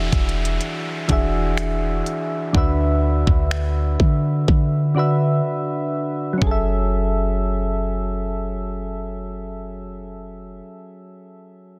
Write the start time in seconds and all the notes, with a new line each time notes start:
Already playing: E3 D4 F#4 G#4 E5, downlifter
0.12 E1, kick, closed hi-hat
0.29 closed hi-hat
0.45 closed hi-hat
0.61 closed hi-hat
1.08 E1 E3 D4 F#4 G#4, kick, closed hi-hat
1.12 E5
1.57 finger snap, closed hi-hat
2.06 closed hi-hat
2.53 D2 D3 D4 F#4 B4, kick
2.57 E5
3.27 D2, kick
3.51 finger snap
4.00 D3, kick
4.48 D3, kick
4.95 D3 D4 F#4 B4
4.99 E5
6.33 F#3
6.38 F#1 C#4, kick
6.42 G#4
6.47 A4
6.51 E5